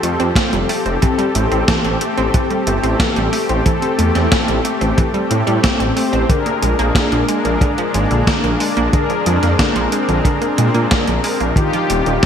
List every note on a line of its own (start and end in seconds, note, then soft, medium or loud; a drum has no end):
0.00 0.15 F2 medium
0.00 0.98 F3 medium
0.00 0.12 A3 medium
0.00 6.26 C4 medium
0.00 0.98 F4 medium
0.00 0.98 G4 medium
0.00 6.26 G4 medium
0.00 0.98 A4 medium
0.00 closed hi-hat loud
0.20 0.31 F2 medium
0.20 0.28 C4 loud
0.20 closed hi-hat soft
0.36 0.50 F3 medium
0.36 kick loud
0.36 snare loud
0.36 closed hi-hat medium
0.53 0.64 F1 medium
0.53 0.67 G3 medium
0.53 closed hi-hat soft
0.69 0.83 A3 medium
0.69 open hi-hat medium
0.86 0.97 F1 medium
0.86 0.94 C4 medium
0.86 closed hi-hat soft
1.02 1.16 E3 loud
1.02 6.26 A3 medium
1.02 1.97 C4 loud
1.02 1.97 G4 medium
1.02 1.97 A4 loud
1.02 kick loud
1.02 closed hi-hat medium
1.18 1.32 G3 loud
1.18 closed hi-hat soft
1.35 1.47 A1 loud
1.35 1.49 A3 medium
1.35 closed hi-hat loud
1.52 1.63 A1 medium
1.52 1.66 C4 medium
1.52 closed hi-hat soft
1.68 1.84 E3 loud
1.68 kick loud
1.68 snare loud
1.68 closed hi-hat medium
1.85 1.96 A1 medium
1.85 1.93 C4 medium
1.85 closed hi-hat soft
2.01 2.09 A3 medium
2.01 3.62 C4 medium
2.01 3.62 G4 medium
2.01 3.62 A4 loud
2.01 closed hi-hat loud
2.17 2.29 A1 medium
2.17 2.26 C4 loud
2.17 closed hi-hat soft
2.34 2.48 E3 medium
2.34 kick loud
2.34 closed hi-hat medium
2.50 2.64 G3 medium
2.50 closed hi-hat soft
2.67 2.79 G1 medium
2.67 2.81 A3 medium
2.67 closed hi-hat medium
2.83 2.95 A1 medium
2.83 2.92 C4 medium
2.83 closed hi-hat soft
3.00 3.14 E3 loud
3.00 kick loud
3.00 snare loud
3.00 closed hi-hat medium
3.16 3.28 A1 medium
3.16 3.30 G3 loud
3.16 closed hi-hat soft
3.33 3.47 A3 medium
3.33 open hi-hat medium
3.49 3.61 A1 medium
3.49 3.63 C4 medium
3.49 closed hi-hat soft
3.66 3.81 E3 loud
3.66 4.61 C4 loud
3.66 4.61 G4 medium
3.66 4.61 A4 loud
3.66 kick loud
3.66 closed hi-hat medium
3.82 3.91 C4 medium
3.82 closed hi-hat soft
3.99 4.10 E2 loud
3.99 4.07 A3 medium
3.99 closed hi-hat loud
4.15 4.27 E2 medium
4.15 4.24 C4 loud
4.15 snare soft
4.15 closed hi-hat soft
4.32 4.46 E3 medium
4.32 kick loud
4.32 snare loud
4.32 closed hi-hat medium
4.48 4.60 A1 medium
4.48 4.62 G3 medium
4.48 closed hi-hat soft
4.65 4.79 A3 medium
4.65 5.93 C4 medium
4.65 5.93 G4 medium
4.65 5.93 A4 medium
4.65 closed hi-hat medium
4.81 4.93 A1 medium
4.81 4.90 C4 medium
4.81 closed hi-hat soft
4.97 5.12 E3 loud
4.97 kick loud
4.97 closed hi-hat medium
5.14 5.28 G3 loud
5.14 closed hi-hat soft
5.30 5.42 A2 medium
5.30 5.39 C4 medium
5.30 closed hi-hat medium
5.47 5.59 A2 medium
5.47 5.61 G3 loud
5.47 closed hi-hat soft
5.63 5.79 C4 medium
5.63 kick loud
5.63 snare loud
5.63 closed hi-hat medium
5.80 5.92 A1 medium
5.80 5.94 C4 medium
5.80 closed hi-hat soft
5.96 6.12 A3 medium
5.96 6.26 C4 loud
5.96 6.26 G4 medium
5.96 6.26 C5 loud
5.96 open hi-hat medium
6.13 6.25 A1 medium
6.13 6.21 C4 medium
6.13 closed hi-hat soft
6.29 6.45 D3 loud
6.29 11.53 G#3 medium
6.29 8.91 A#3 medium
6.29 11.53 D4 medium
6.29 7.25 D4 loud
6.29 7.25 G#4 medium
6.29 7.25 A#4 loud
6.29 kick loud
6.29 closed hi-hat medium
6.46 6.54 A#3 medium
6.46 closed hi-hat soft
6.62 6.74 A#1 medium
6.62 6.71 G#3 medium
6.62 closed hi-hat medium
6.79 6.91 A#1 medium
6.79 6.87 A#3 loud
6.79 closed hi-hat soft
6.95 7.09 D3 medium
6.95 kick loud
6.95 snare loud
6.95 closed hi-hat medium
7.12 7.24 A#1 medium
7.12 7.26 F3 medium
7.12 closed hi-hat soft
7.28 7.42 G#3 medium
7.28 8.89 D4 medium
7.28 8.89 G#4 medium
7.28 8.89 A#4 medium
7.28 closed hi-hat medium
7.45 7.57 A#1 medium
7.45 7.53 A#3 medium
7.45 closed hi-hat soft
7.61 7.75 D3 loud
7.61 kick loud
7.61 closed hi-hat medium
7.78 7.92 F3 loud
7.78 closed hi-hat soft
7.94 8.06 G#1 medium
7.94 8.08 G#3 medium
7.94 closed hi-hat medium
8.11 8.23 A#1 medium
8.11 8.25 D3 medium
8.11 closed hi-hat soft
8.27 8.43 D3 loud
8.27 kick loud
8.27 snare loud
8.27 closed hi-hat medium
8.44 8.56 A#1 medium
8.44 8.52 A#3 medium
8.44 closed hi-hat soft
8.60 8.69 G#3 medium
8.60 open hi-hat medium
8.77 8.88 A#1 medium
8.77 8.85 A#3 loud
8.77 closed hi-hat soft
8.93 9.07 D3 medium
8.93 11.54 C4 medium
8.93 9.88 D4 loud
8.93 9.88 G#4 medium
8.93 9.88 A#4 loud
8.93 kick loud
8.93 closed hi-hat medium
9.10 9.24 F3 medium
9.10 closed hi-hat soft
9.26 9.38 F2 medium
9.26 9.40 G#3 medium
9.26 closed hi-hat medium
9.43 9.54 F2 medium
9.43 9.51 A#3 medium
9.43 snare soft
9.43 closed hi-hat soft
9.59 9.73 D3 loud
9.59 kick loud
9.59 snare loud
9.59 closed hi-hat medium
9.76 9.87 A#1 medium
9.76 9.90 F3 loud
9.76 closed hi-hat soft
9.92 10.06 G#3 medium
9.92 11.53 D4 medium
9.92 11.53 G#4 medium
9.92 11.53 A#4 medium
9.92 closed hi-hat medium
10.09 10.20 A#1 medium
10.09 10.23 D3 medium
10.09 closed hi-hat soft
10.25 10.41 D3 loud
10.25 kick loud
10.25 closed hi-hat medium
10.42 10.50 A#3 medium
10.42 closed hi-hat soft
10.58 10.70 A#2 medium
10.58 10.67 G#3 medium
10.58 closed hi-hat medium
10.75 10.86 A#2 medium
10.75 10.83 A#3 loud
10.75 closed hi-hat soft
10.91 11.05 D3 medium
10.91 kick loud
10.91 snare loud
10.91 closed hi-hat medium
11.07 11.19 A#1 medium
11.07 11.22 F3 medium
11.07 closed hi-hat soft
11.24 11.38 G#3 medium
11.24 open hi-hat medium
11.40 11.52 A#1 medium
11.40 11.49 A#3 medium
11.40 closed hi-hat soft
11.56 11.71 D#3 medium
11.56 12.26 D#3 medium
11.56 12.26 A#3 medium
11.56 12.26 D#4 loud
11.56 12.26 F4 medium
11.56 12.26 G4 loud
11.56 12.26 G4 medium
11.56 kick loud
11.56 closed hi-hat medium
11.73 11.87 F3 loud
11.73 closed hi-hat soft
11.90 12.02 D#1 loud
11.90 12.04 G3 medium
11.90 closed hi-hat medium
12.06 12.18 D#1 medium
12.06 12.20 D#3 medium
12.06 closed hi-hat soft
12.23 12.26 D#3 loud
12.23 snare loud
12.23 closed hi-hat medium